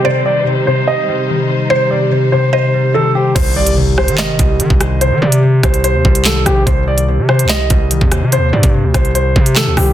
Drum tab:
CC |----------------|----------------|x---------------|----------------|
HH |----------------|----------------|x--x---x--x-x-x-|x--x--xxx--x--x-|
CP |----------------|----------------|--------x-------|------------x---|
SD |----------------|----------------|------r-o-----r-|------r-----o-r-|
BD |----------------|----------------|o---------o--o--|------o---o-----|

CC |----------------|----------------|
HH |x--x---x--x-x-x-|x--x--xxx--x--o-|
CP |--------x-------|------------x---|
SD |------r-o-----r-|------r-----o-r-|
BD |o---------o--o--|---o--o---o-----|